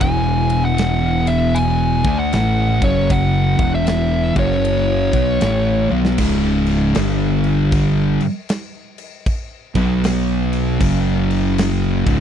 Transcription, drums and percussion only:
0.01 kick, ride
0.50 ride
0.78 snare, ride
1.27 ride
1.55 ride
2.04 kick, ride
2.33 snare, ride
2.82 kick, ride
3.10 kick, ride
3.59 kick, ride
3.87 snare, ride
4.36 kick, ride
4.51 snare
4.65 ride
5.13 kick, ride
5.41 snare, ride
5.90 high tom
6.05 snare
6.18 kick, crash
6.66 crash
6.95 snare, crash
7.44 crash
7.72 kick, crash
8.20 crash
8.49 snare, crash
8.98 crash
9.26 kick, crash
9.75 kick, crash
10.04 snare, crash
10.53 crash
10.81 kick, crash
11.30 crash
11.58 snare, crash
12.07 kick, crash

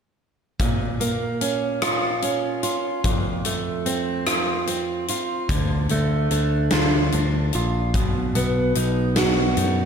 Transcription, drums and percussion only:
0.60 kick, closed hi-hat
1.01 closed hi-hat
1.41 closed hi-hat
1.82 cross-stick, closed hi-hat
2.22 closed hi-hat
2.63 closed hi-hat
3.04 kick, closed hi-hat
3.45 closed hi-hat
3.86 closed hi-hat
4.26 cross-stick, closed hi-hat
4.67 closed hi-hat
5.08 closed hi-hat
5.49 kick, closed hi-hat
5.89 closed hi-hat
6.31 closed hi-hat
6.71 snare, closed hi-hat
7.12 closed hi-hat
7.53 closed hi-hat
7.94 kick, closed hi-hat
8.35 closed hi-hat
8.75 closed hi-hat
9.16 snare, closed hi-hat
9.57 closed hi-hat

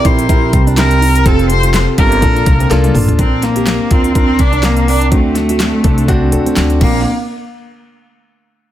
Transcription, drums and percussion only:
0.05 kick, closed hi-hat
0.19 closed hi-hat
0.29 kick, closed hi-hat
0.53 kick, closed hi-hat
0.67 closed hi-hat
0.77 snare, clap, closed hi-hat
0.91 closed hi-hat
1.02 open hi-hat
1.15 closed hi-hat
1.26 kick, closed hi-hat
1.39 closed hi-hat
1.50 closed hi-hat
1.63 closed hi-hat
1.74 snare, clap, closed hi-hat
1.98 kick, closed hi-hat
2.12 closed hi-hat
2.22 kick, closed hi-hat
2.36 closed hi-hat
2.46 kick, closed hi-hat
2.60 closed hi-hat
2.71 snare, closed hi-hat
2.84 closed hi-hat, high tom
2.95 mid tom, open hi-hat
3.08 closed hi-hat, floor tom
3.19 kick, closed hi-hat
3.42 snare, closed hi-hat
3.56 closed hi-hat
3.67 snare, clap, closed hi-hat
3.91 kick, closed hi-hat
4.04 closed hi-hat
4.15 kick, closed hi-hat
4.39 kick, closed hi-hat
4.53 closed hi-hat
4.63 snare, clap, closed hi-hat
4.77 closed hi-hat
4.88 open hi-hat
5.01 closed hi-hat
5.12 kick, closed hi-hat
5.35 snare, closed hi-hat
5.49 closed hi-hat
5.60 snare, clap, closed hi-hat
5.84 kick, closed hi-hat
5.98 closed hi-hat
6.08 kick, closed hi-hat
6.32 closed hi-hat
6.46 closed hi-hat
6.56 snare, clap, closed hi-hat
6.70 closed hi-hat
6.81 kick, crash

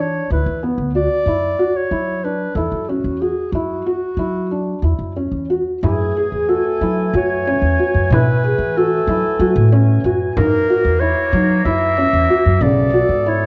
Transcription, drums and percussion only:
5.84 frame drum
6.83 frame drum
7.47 frame drum
8.12 frame drum
9.08 frame drum
9.72 frame drum
10.37 frame drum
11.32 frame drum
11.97 frame drum
12.62 frame drum
12.94 frame drum

